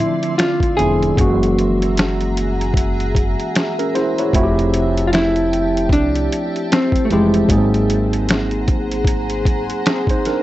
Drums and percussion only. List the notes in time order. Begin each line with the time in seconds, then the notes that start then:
0.00 closed hi-hat
0.23 closed hi-hat
0.39 finger snap, snare, closed hi-hat
0.60 kick, closed hi-hat
0.79 closed hi-hat
1.03 closed hi-hat
1.17 kick, closed hi-hat
1.43 closed hi-hat
1.59 closed hi-hat
1.82 closed hi-hat
1.97 finger snap, snare, closed hi-hat
2.21 closed hi-hat
2.37 closed hi-hat
2.61 closed hi-hat
2.74 kick, closed hi-hat
3.00 closed hi-hat
3.15 kick, closed hi-hat
3.40 closed hi-hat
3.55 finger snap, snare, closed hi-hat
3.79 closed hi-hat
3.95 snare, closed hi-hat
4.18 closed hi-hat
4.33 kick, closed hi-hat
4.59 closed hi-hat
4.74 closed hi-hat
4.97 closed hi-hat
5.13 finger snap, snare, closed hi-hat
5.36 closed hi-hat
5.53 closed hi-hat
5.77 closed hi-hat
5.89 kick, closed hi-hat
6.15 closed hi-hat
6.32 closed hi-hat
6.56 closed hi-hat
6.72 finger snap, snare, closed hi-hat
6.92 kick, closed hi-hat
7.10 closed hi-hat
7.34 closed hi-hat
7.49 kick, closed hi-hat
7.74 closed hi-hat
7.90 closed hi-hat
8.13 closed hi-hat
8.29 finger snap, snare, closed hi-hat
8.51 closed hi-hat
8.68 kick, closed hi-hat
8.91 closed hi-hat
9.05 kick, closed hi-hat
9.30 closed hi-hat
9.45 kick, closed hi-hat
9.70 closed hi-hat
9.86 finger snap, snare, closed hi-hat
10.07 kick, closed hi-hat
10.25 snare, closed hi-hat